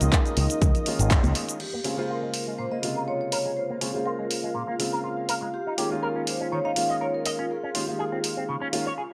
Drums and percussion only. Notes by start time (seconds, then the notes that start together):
0.01 closed hi-hat, shaker
0.12 kick, clap, closed hi-hat, shaker
0.26 closed hi-hat, shaker
0.37 open hi-hat
0.50 closed hi-hat, shaker
0.62 kick, closed hi-hat, low conga, shaker
0.75 closed hi-hat, shaker
0.86 open hi-hat
0.99 closed hi-hat, shaker
1.11 kick, clap, closed hi-hat, shaker
1.24 closed hi-hat, high conga, shaker
1.35 open hi-hat
1.49 closed hi-hat, shaker
1.60 crash
1.84 open hi-hat
2.34 open hi-hat
2.83 open hi-hat
3.32 open hi-hat
3.81 open hi-hat
4.31 open hi-hat
4.80 open hi-hat
5.29 open hi-hat
5.78 open hi-hat
6.27 open hi-hat
6.76 open hi-hat
7.26 open hi-hat
7.75 open hi-hat
8.24 open hi-hat
8.73 open hi-hat